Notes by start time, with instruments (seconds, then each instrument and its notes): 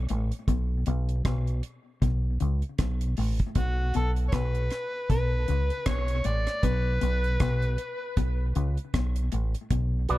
0.09 fingered electric bass A1, clean electric guitar A2, closed hi-hat
0.32 closed hi-hat
0.48 fingered electric bass B1, clean electric guitar B2, kick, closed hi-hat
0.86 fingered electric bass B1, clean electric guitar B2, closed hi-hat
1.09 closed hi-hat
1.25 fingered electric bass B1, clean electric guitar B2, kick, cross-stick, closed hi-hat
1.47 closed hi-hat
1.63 closed hi-hat
2.02 fingered electric bass B1, clean electric guitar B2, kick, closed hi-hat
2.40 fingered electric bass C#2, clean electric guitar C#3, closed hi-hat
2.62 closed hi-hat
2.78 fingered electric bass B1, clean electric guitar B2, kick, cross-stick, closed hi-hat
3.01 closed hi-hat
3.17 fingered electric bass A1, clean electric guitar A2, open hi-hat
3.39 kick, closed hi-hat
3.55 fingered electric bass B1, clean electric guitar B2, harmonica F#4, kick, closed hi-hat
3.94 fingered electric bass B1, clean electric guitar B2, harmonica A4, closed hi-hat
4.16 closed hi-hat
4.29 clean electric guitar B2, harmonica C#5, closed hi-hat
4.33 fingered electric bass B1, harmonica B4, kick, cross-stick
4.55 closed hi-hat
4.70 cross-stick, closed hi-hat
5.10 fingered electric bass B1, clean electric guitar B2, harmonica B4, kick, closed hi-hat
5.48 fingered electric bass C#2, clean electric guitar C#3, closed hi-hat
5.70 closed hi-hat
5.86 fingered electric bass B1, clean electric guitar B2, harmonica C#5, kick, cross-stick, closed hi-hat
6.08 closed hi-hat
6.24 fingered electric bass A1, clean electric guitar A2, harmonica D5, closed hi-hat
6.47 cross-stick, closed hi-hat
6.63 fingered electric bass B1, clean electric guitar B2, harmonica B4, kick, closed hi-hat
7.01 fingered electric bass B1, clean electric guitar B2, closed hi-hat
7.24 closed hi-hat
7.40 fingered electric bass B1, clean electric guitar B2, kick, cross-stick, closed hi-hat
7.62 closed hi-hat
7.78 closed hi-hat
8.17 fingered electric bass B1, clean electric guitar B2, kick, closed hi-hat
8.55 fingered electric bass C#2, clean electric guitar C#3, closed hi-hat
8.77 closed hi-hat
8.94 fingered electric bass B1, clean electric guitar B2, kick, cross-stick, closed hi-hat
9.16 closed hi-hat
9.32 fingered electric bass A1, clean electric guitar A2, closed hi-hat
9.55 closed hi-hat
9.71 fingered electric bass B1, clean electric guitar B2, kick, closed hi-hat
10.09 fingered electric bass B1, clean electric guitar F#4 B4 D5, closed hi-hat